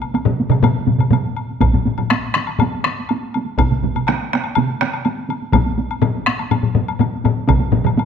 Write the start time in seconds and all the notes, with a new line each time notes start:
0.01 taiko high, high woodblock
0.14 taiko high, high woodblock
0.25 taiko low-mid, taiko mid, taiko high
0.40 taiko high
0.50 taiko low-mid, taiko mid, taiko high, high woodblock
0.63 taiko low-mid, taiko mid, taiko high, high woodblock
0.75 taiko high
0.87 taiko low-mid, taiko mid, taiko high
0.99 taiko low-mid, taiko mid, taiko high, high woodblock
1.11 taiko low-mid, taiko mid, taiko high, high woodblock
1.25 taiko high
1.37 high woodblock
1.51 taiko high
1.61 taiko, taiko low-mid, taiko high, high woodblock
1.73 taiko low-mid, taiko high
1.85 taiko low-mid, taiko high
1.97 taiko low-mid, taiko high, high woodblock
2.10 taiko rim, taiko high, high woodblock
2.23 taiko high
2.34 taiko rim, taiko high
2.47 taiko high, high woodblock
2.59 taiko low-mid, taiko high, high woodblock
2.74 taiko high
2.84 taiko rim, taiko high
2.99 taiko high
3.09 taiko high, high woodblock
3.23 taiko high
3.34 taiko high, high woodblock
3.46 taiko high
3.58 taiko, taiko mid, taiko high, high woodblock
3.71 taiko mid, taiko high
3.83 taiko mid, taiko high
3.95 taiko mid, taiko high, high woodblock
4.07 taiko rim, taiko high, high woodblock
4.22 taiko high
4.33 taiko rim, taiko high
4.44 taiko high, high woodblock
4.55 taiko mid, taiko high, high woodblock
4.70 taiko high
4.81 taiko rim, taiko high
4.93 taiko high, high woodblock
5.05 taiko high, high woodblock
5.17 taiko high
5.29 taiko high, high woodblock
5.42 taiko high
5.53 taiko, taiko low-mid, taiko high, high woodblock
5.66 taiko high
5.78 taiko high
5.90 taiko high, high woodblock
6.02 taiko low-mid, taiko high, high woodblock
6.15 taiko high
6.27 taiko rim, taiko high
6.39 taiko high, high woodblock
6.51 taiko low-mid, taiko high, high woodblock
6.63 taiko low-mid, taiko high
6.75 taiko low-mid, taiko high
6.88 taiko high, high woodblock
6.99 taiko low-mid, taiko high, high woodblock
7.12 taiko high
7.24 taiko low-mid, taiko high, high woodblock
7.37 taiko high
7.48 taiko, taiko low-mid, taiko mid, taiko high, high woodblock
7.60 taiko high
7.72 taiko low-mid, taiko mid, taiko high
7.84 taiko low-mid, taiko mid, taiko high, high woodblock
7.97 taiko high, high woodblock